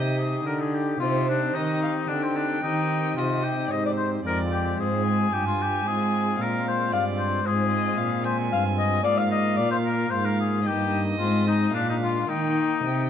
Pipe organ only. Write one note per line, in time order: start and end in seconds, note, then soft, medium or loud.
0.00 0.42 C3 medium
0.00 0.96 D#4 medium
0.00 0.96 G4 medium
0.46 0.97 D3 medium
0.96 2.57 C4 soft
0.96 2.58 D#4 soft
0.96 2.59 G4 soft
1.01 1.52 C3 medium
1.56 2.06 D#3 medium
2.09 2.60 D3 medium
2.59 4.19 C4 soft
2.59 4.20 D#4 medium
2.59 4.21 G4 soft
2.64 3.14 D#3 medium
3.18 3.68 C3 medium
3.73 4.22 G#2 medium
4.21 5.27 G#3 soft
4.21 5.28 C4 medium
4.21 5.81 F4 medium
4.26 4.75 F2 medium
4.80 5.29 G#2 medium
5.33 5.82 G2 medium
5.82 7.40 G#3 medium
5.82 7.40 C4 soft
5.82 7.41 F4 medium
5.87 6.36 G#2 medium
6.40 6.89 A#2 medium
6.94 7.42 G2 medium
7.42 9.00 G#3 soft
7.42 9.00 C4 medium
7.42 9.01 F4 medium
7.47 7.95 G#2 medium
8.00 8.48 A#2 medium
8.53 9.02 G2 medium
9.01 10.60 A#3 medium
9.01 10.60 F4 medium
9.05 9.55 G#2 medium
9.59 10.08 A#2 medium
10.13 10.62 G#2 medium
10.62 11.16 A#3 medium
10.62 11.17 D#4 medium
10.67 11.16 G2 medium
11.15 11.67 G#3 medium
11.15 11.71 C4 soft
11.20 11.70 G#2 medium
11.69 12.25 G#3 soft
11.69 12.24 A#3 medium
11.69 12.27 D4 soft
11.74 12.25 A#2 medium
12.26 12.80 D#3 medium
12.26 12.81 A#3 soft
12.26 13.10 D#4 soft
12.85 13.10 C3 medium